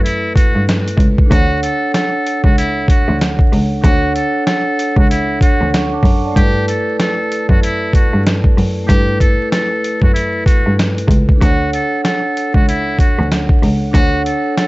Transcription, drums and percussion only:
0.06 closed hi-hat
0.36 kick, closed hi-hat
0.69 snare, closed hi-hat
0.88 closed hi-hat
0.98 kick, closed hi-hat
1.18 kick
1.31 kick, closed hi-hat
1.63 closed hi-hat
1.94 snare, closed hi-hat
2.27 closed hi-hat
2.44 kick
2.58 closed hi-hat
2.88 kick, closed hi-hat
3.21 snare, closed hi-hat
3.39 kick
3.53 open hi-hat
3.84 kick, closed hi-hat
4.16 closed hi-hat
4.47 snare, closed hi-hat
4.79 closed hi-hat
4.96 kick
5.11 closed hi-hat
5.41 kick, closed hi-hat
5.74 snare, closed hi-hat
6.03 kick, open hi-hat
6.36 kick, closed hi-hat
6.68 closed hi-hat
7.00 snare, closed hi-hat
7.32 closed hi-hat
7.49 kick
7.63 closed hi-hat
7.93 kick, closed hi-hat
8.27 snare, closed hi-hat
8.44 kick
8.58 open hi-hat
8.89 kick, closed hi-hat
9.20 kick, closed hi-hat
9.52 snare, closed hi-hat
9.84 closed hi-hat
10.02 kick
10.16 closed hi-hat
10.46 kick, closed hi-hat
10.79 snare, closed hi-hat
10.98 closed hi-hat
11.08 kick, closed hi-hat
11.29 kick
11.41 kick, closed hi-hat
11.73 closed hi-hat
12.05 snare, closed hi-hat
12.37 closed hi-hat
12.54 kick
12.69 closed hi-hat
12.99 kick, closed hi-hat
13.32 snare, closed hi-hat
13.49 kick
13.63 open hi-hat
13.94 kick, closed hi-hat
14.26 closed hi-hat
14.57 snare, closed hi-hat

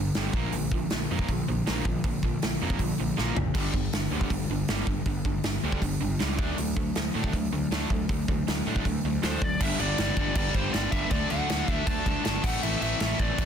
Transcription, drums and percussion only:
0.14 snare, open hi-hat
0.33 kick
0.52 open hi-hat
0.72 kick
0.90 snare, open hi-hat
1.19 kick
1.28 kick, open hi-hat
1.67 snare, open hi-hat
1.85 kick
2.04 kick, open hi-hat
2.23 kick
2.42 snare, open hi-hat
2.70 kick
2.79 kick, open hi-hat
3.18 snare
3.37 floor tom
3.55 kick, open hi-hat, crash
3.74 kick
3.93 snare, open hi-hat
4.21 kick
4.30 kick, open hi-hat
4.68 snare, open hi-hat
4.87 kick
5.05 kick, open hi-hat
5.25 kick
5.43 snare, open hi-hat
5.72 kick
5.82 kick, open hi-hat
6.20 snare, open hi-hat
6.39 kick
6.58 open hi-hat
6.77 kick
6.95 snare, open hi-hat
7.24 kick
7.33 kick, open hi-hat
7.72 snare, open hi-hat
7.90 kick
8.09 kick, open hi-hat
8.28 kick
8.48 snare, open hi-hat
8.76 kick
8.85 kick, open hi-hat
9.23 snare, open hi-hat
9.42 kick
9.61 kick, crash
9.80 crash
9.98 snare, crash
10.17 kick, crash
10.35 kick, crash
10.54 kick, crash
10.74 snare, crash
10.92 kick, crash
11.11 kick, crash
11.30 crash
11.50 snare, crash
11.68 kick, crash
11.87 kick, crash
12.06 kick, crash
12.25 snare, crash
12.44 kick, crash
12.63 crash
12.82 crash
13.00 snare, crash
13.19 kick, crash
13.38 kick, crash

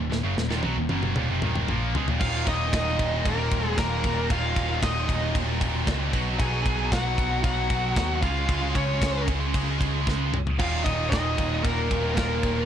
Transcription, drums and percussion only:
0.12 snare
0.38 snare
0.51 snare
0.63 high tom
0.89 high tom
1.03 mid tom
1.16 mid tom
1.42 mid tom
1.55 mid tom
1.68 mid tom
1.95 floor tom
2.08 floor tom
2.21 kick, crash
2.47 kick, ride
2.73 kick, snare, ride
2.99 kick, ride
3.25 kick, ride
3.51 kick, ride
3.78 kick, snare, ride
4.04 kick, ride
4.30 kick, ride
4.56 kick, ride
4.83 kick, snare, ride
5.09 kick, ride
5.35 kick, ride
5.61 kick, ride
5.87 kick, snare, ride
6.13 kick, ride
6.40 kick, ride
6.66 kick, ride
6.92 kick, snare, ride
7.18 kick, ride
7.44 kick, ride
7.70 kick, ride
7.96 kick, snare, ride
8.23 kick, ride
8.49 kick, ride
8.75 kick, ride
9.02 kick, snare, ride
9.28 kick, ride
9.54 kick, ride
9.81 kick, ride
10.07 kick, snare
10.34 mid tom
10.47 floor tom
10.60 kick, crash, ride
10.86 kick, ride
11.12 kick, snare, ride
11.38 kick, ride
11.65 kick, ride
11.91 kick, ride
12.17 kick, snare, ride
12.43 kick, ride

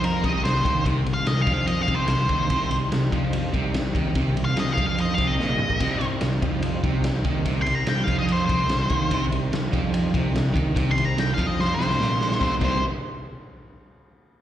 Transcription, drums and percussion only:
0.04 ride
0.24 kick, ride
0.45 snare, ride
0.65 kick, ride
0.86 kick, ride
1.06 ride
1.26 snare, ride
1.47 kick, snare, ride
1.67 ride
1.88 kick, ride
2.07 snare, ride
2.29 kick, ride
2.50 kick, ride
2.71 ride
2.92 snare, ride
3.12 kick, ride
3.33 ride
3.54 kick, ride
3.74 snare, ride
3.95 kick, ride
4.15 kick, ride
4.37 ride
4.57 snare, ride
4.78 kick, ride
4.98 ride
5.18 kick, ride
5.40 snare
5.49 mid tom
5.59 mid tom
5.70 kick
5.80 kick, ride, crash
6.01 ride
6.21 snare, ride
6.42 kick, ride
6.62 ride
6.84 kick, ride
7.04 snare, ride
7.24 kick, ride
7.45 kick, ride
7.66 ride
7.87 snare, ride
8.08 kick, snare, ride
8.28 ride
8.49 kick, ride
8.69 snare, ride
8.90 kick, ride
9.11 kick, ride
9.32 ride
9.53 snare, ride
9.73 kick, snare, ride
9.94 ride
10.14 kick, ride
10.35 snare, ride
10.56 kick, ride
10.76 kick, ride
10.98 ride
11.18 snare, ride
11.38 kick, ride
11.60 snare
11.80 snare
11.91 snare
12.01 snare
12.21 snare
12.32 snare
12.41 kick, snare
12.61 kick, crash

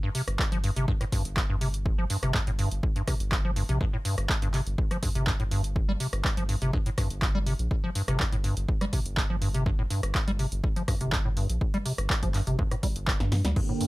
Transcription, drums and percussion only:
0.15 open hi-hat
0.28 cross-stick, closed hi-hat
0.39 kick, clap
0.52 closed hi-hat
0.64 open hi-hat
0.76 closed hi-hat
0.88 kick
1.01 cross-stick, closed hi-hat
1.12 kick, open hi-hat
1.25 closed hi-hat
1.37 kick, clap
1.61 open hi-hat
1.74 closed hi-hat
1.86 kick
2.10 open hi-hat
2.23 cross-stick, closed hi-hat
2.34 kick, clap
2.47 closed hi-hat
2.59 open hi-hat
2.71 closed hi-hat
2.83 kick
2.96 closed hi-hat
3.08 kick, cross-stick, open hi-hat
3.20 closed hi-hat
3.32 kick, clap
3.56 open hi-hat
3.69 closed hi-hat
3.81 kick
4.05 open hi-hat
4.18 cross-stick, closed hi-hat
4.29 kick, clap
4.42 closed hi-hat
4.54 clap, open hi-hat
4.67 closed hi-hat
4.78 kick
4.91 cross-stick, closed hi-hat
5.03 kick, open hi-hat
5.15 closed hi-hat
5.27 kick, clap
5.40 closed hi-hat
5.51 open hi-hat
5.64 closed hi-hat
5.76 kick
6.00 open hi-hat
6.13 cross-stick, closed hi-hat
6.25 kick, clap
6.37 closed hi-hat
6.49 open hi-hat
6.62 closed hi-hat
6.73 kick
6.86 closed hi-hat
6.98 kick, cross-stick, open hi-hat
7.10 closed hi-hat
7.22 kick, clap
7.47 open hi-hat
7.59 closed hi-hat
7.71 kick
7.95 open hi-hat
8.08 cross-stick, closed hi-hat
8.20 kick, clap
8.32 closed hi-hat
8.44 open hi-hat
8.57 closed hi-hat
8.69 kick
8.81 cross-stick, closed hi-hat
8.93 kick, open hi-hat
9.06 closed hi-hat
9.17 kick, clap
9.42 open hi-hat
9.54 closed hi-hat
9.66 kick
9.90 open hi-hat
10.03 cross-stick, closed hi-hat
10.15 kick, clap
10.28 closed hi-hat
10.39 open hi-hat
10.52 closed hi-hat
10.64 kick
10.76 closed hi-hat
10.88 kick, cross-stick, open hi-hat
11.01 closed hi-hat
11.12 kick, clap
11.37 open hi-hat
11.50 closed hi-hat
11.61 kick
11.74 closed hi-hat
11.86 open hi-hat
11.98 cross-stick, closed hi-hat
12.10 kick, clap
12.23 kick, closed hi-hat
12.34 clap, open hi-hat
12.47 closed hi-hat
12.59 kick
12.71 cross-stick, closed hi-hat
12.83 kick, open hi-hat
12.96 closed hi-hat
13.08 kick, clap
13.20 snare, closed hi-hat
13.32 snare, open hi-hat
13.45 snare, closed hi-hat
13.56 kick, crash
13.81 open hi-hat

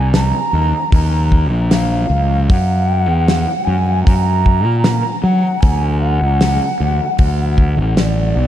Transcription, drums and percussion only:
0.14 snare, open hi-hat
0.92 kick, open hi-hat
1.32 kick
1.71 snare, open hi-hat
2.50 kick, open hi-hat
3.28 snare, open hi-hat
4.07 kick, open hi-hat
4.46 kick
4.84 snare, open hi-hat
5.62 kick, open hi-hat
6.41 snare, open hi-hat
7.19 kick, open hi-hat
7.58 kick
7.97 snare, open hi-hat

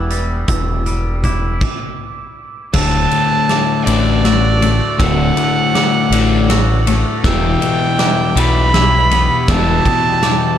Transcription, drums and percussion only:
0.10 closed hi-hat
0.48 kick, closed hi-hat
0.86 closed hi-hat
1.24 kick, closed hi-hat
1.61 kick, crash
2.73 kick, snare, crash
3.11 ride
3.49 snare, ride
3.87 ride
4.25 snare, ride
4.62 ride
5.00 kick, snare, ride
5.37 ride
5.75 snare, ride
6.12 ride
6.50 snare, ride
6.87 ride
7.24 kick, snare, ride
7.62 ride
7.99 snare, ride
8.37 ride
8.74 snare, ride
9.11 ride
9.48 kick, snare, ride
9.85 kick, ride
10.23 snare, ride

